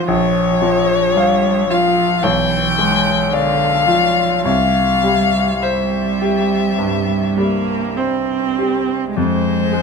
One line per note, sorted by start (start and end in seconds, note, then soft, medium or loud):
0.00 0.12 F3 soft
0.00 0.12 F4 soft
0.00 0.12 F5 soft
0.08 2.20 A#1 medium
0.08 1.17 F3 soft
0.08 1.72 C#5 medium
0.62 1.48 F3 soft
1.15 1.68 G3 soft
1.15 2.03 F5 soft
1.69 2.23 F3 soft
1.69 2.24 F4 soft
1.69 2.25 F5 medium
2.22 4.42 B1 soft
2.22 3.33 E3 soft
2.22 3.35 G5 medium
2.79 3.67 G#3 soft
3.32 3.88 D3 soft
3.32 4.23 D5 soft
3.32 4.46 F5 medium
3.87 4.45 F3 soft
3.87 4.45 F4 soft
4.44 6.75 C2 soft
4.44 5.51 G3 soft
4.44 5.64 F5 medium
5.04 5.97 G3 soft
5.62 7.39 G3 soft
5.62 6.55 C5 soft
5.62 7.99 E5 soft
6.21 7.15 G4 soft
6.78 7.75 G2 soft
7.37 8.34 G3 soft
7.37 7.99 A#3 soft
7.97 9.14 C4 soft
7.97 8.93 C5 soft
8.59 9.17 G4 soft
9.15 9.82 F2 soft
9.15 9.82 G#3 soft
9.20 9.82 C5 medium
9.73 9.82 G#3 soft